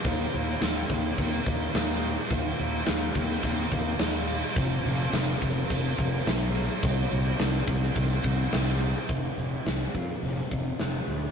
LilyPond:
<<
  \new Staff \with { instrumentName = "Fingered electric bass" } { \clef bass \time 4/4 \key f \dorian \tempo 4 = 106 ees,8 ees,8 ees,8 ees,8 ees,8 ees,8 ees,4 | ees,8 ees,8 ees,8 ees,8 ees,8 ees,8 ees,4 | f,,8 f,,8 f,,8 f,,8 f,,8 f,,8 b,,4 | c,8 c,8 c,8 c,8 c,8 c,8 c,4 |
f,,8 f,,8 c,8 f,8 f,,8 f,,8 f,,8 d,8 | }
  \new DrumStaff \with { instrumentName = "Drums" } \drummode { \time 4/4 <cymc bd>8 cymc8 <cymc sn>8 <cymc bd sn>8 <cymc bd>8 <cymc bd>8 <cymc sn>8 cymc8 | <cymc bd>8 cymc8 <cymc sn>8 <cymc bd>16 sn16 <cymc bd>8 <cymc bd>8 <cymc sn>8 cymc8 | <cymc bd>8 cymc8 <cymc sn>8 <cymc bd>8 <cymc bd>8 <cymc bd>8 <cymc sn>8 cymc8 | <cymc bd>8 cymc8 <cymc sn>8 <cymc bd>16 sn16 <cymc bd>8 <cymc bd>8 <cymc sn>8 cymc8 |
<hho bd>8 hho8 <hho sn>8 <hho bd>8 hho8 <hho bd>8 <hho sn>8 hho8 | }
>>